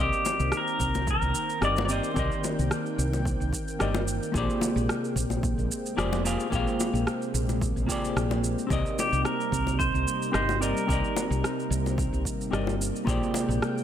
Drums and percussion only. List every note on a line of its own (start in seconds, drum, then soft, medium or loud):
0.13 shaker soft
0.25 high bongo medium
0.25 shaker medium
0.40 shaker soft
0.52 cross-stick medium
0.52 shaker soft
0.67 shaker soft
0.80 kick medium
0.80 shaker medium
0.95 high bongo medium
0.95 shaker soft
1.07 kick medium
1.07 shaker soft
1.22 shaker soft
1.35 shaker medium
1.50 shaker soft
1.62 cross-stick medium
1.62 shaker soft
1.76 high bongo medium
1.76 shaker soft
1.89 shaker medium
2.04 shaker soft
2.16 kick loud
2.16 shaker soft
2.32 shaker soft
2.44 high bongo medium
2.44 shaker medium
2.59 shaker soft
2.71 cross-stick medium
2.71 shaker soft
2.86 shaker soft
2.99 shaker medium
3.13 high bongo medium
3.13 shaker soft
3.25 kick loud
3.25 shaker soft
3.41 shaker soft
3.53 kick medium
3.53 shaker medium
3.68 shaker soft
3.80 cross-stick medium
3.80 shaker soft
3.95 high bongo medium
3.95 shaker soft
4.08 shaker medium
4.23 shaker soft
4.34 kick loud
4.34 shaker soft
4.50 shaker soft
4.61 high bongo medium
4.61 shaker medium
4.77 shaker soft
4.89 cross-stick medium
4.89 shaker soft
5.04 shaker soft
5.16 kick medium
5.16 shaker medium
5.30 high bongo medium
5.30 shaker soft
5.43 kick loud
5.43 shaker soft
5.59 shaker soft
5.71 shaker medium
5.86 shaker soft
5.98 cross-stick medium
5.98 shaker soft
6.13 high bongo medium
6.13 shaker soft
6.26 shaker medium
6.40 shaker soft
6.52 kick loud
6.52 shaker soft
6.67 shaker soft
6.80 high bongo medium
6.80 shaker medium
6.95 shaker soft
7.07 cross-stick medium
7.07 shaker soft
7.22 shaker soft
7.35 shaker medium
7.49 high bongo medium
7.49 shaker soft
7.62 kick loud
7.62 shaker soft
7.77 shaker soft
7.89 kick medium
7.89 shaker medium
8.05 shaker soft
8.17 cross-stick medium
8.17 shaker soft
8.31 high bongo medium
8.31 shaker soft
8.44 shaker medium
8.59 shaker soft
8.70 kick loud
8.70 shaker soft
8.86 shaker soft
8.99 high bongo medium
8.99 shaker medium
9.13 shaker soft
9.25 cross-stick medium
9.25 shaker soft
9.41 shaker soft
9.52 kick medium
9.52 shaker medium
9.67 high bongo medium
9.67 shaker soft
9.80 kick loud
9.80 shaker soft
9.95 shaker soft
10.08 shaker medium
10.22 shaker soft
10.34 cross-stick medium
10.34 shaker soft
10.49 high bongo medium
10.49 shaker soft
10.62 shaker medium
10.77 shaker soft
10.89 kick loud
10.89 shaker soft
11.04 shaker soft
11.16 high bongo medium
11.16 shaker medium
11.32 shaker soft
11.44 cross-stick medium
11.44 shaker soft
11.60 shaker soft
11.72 shaker medium
11.86 high bongo medium
11.86 shaker soft
11.98 kick loud
11.98 shaker soft
12.14 shaker soft
12.25 kick medium
12.25 shaker medium
12.41 shaker soft
12.53 cross-stick medium
12.53 shaker soft
12.67 high bongo medium
12.67 shaker soft
12.82 shaker medium
12.96 shaker soft
13.07 kick loud
13.07 shaker soft
13.23 shaker soft
13.34 high bongo medium
13.34 shaker medium
13.51 shaker soft
13.62 cross-stick medium
13.62 shaker soft
13.78 shaker soft